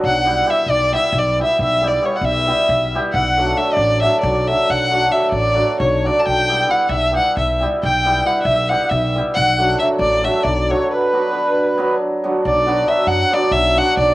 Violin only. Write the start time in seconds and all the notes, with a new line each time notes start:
0.06 F#5
0.50 E5
0.70 D5
0.95 E5
1.19 D5
1.43 E5
1.63 E5
1.88 D5
2.06 C#5
2.16 F#5
2.24 E5
3.13 F#5
3.57 E5
3.74 D5
4.02 E5
4.21 D5
4.48 E5
4.70 F#5
5.12 E5
5.31 D5
5.80 C#5
6.06 D5
6.20 A5
6.26 G5
6.71 F#5
6.89 E5
7.17 F#5
7.38 E5
7.84 G5
8.26 F#5
8.42 E5
8.69 F#5
8.89 E5
9.34 F#5
9.79 E5
9.99 D5
10.24 E5
10.43 D5
10.71 C#5
10.91 B4
12.46 D5
12.88 E5
13.07 F#5
13.34 D5
13.52 E5
13.78 F#5
13.99 D5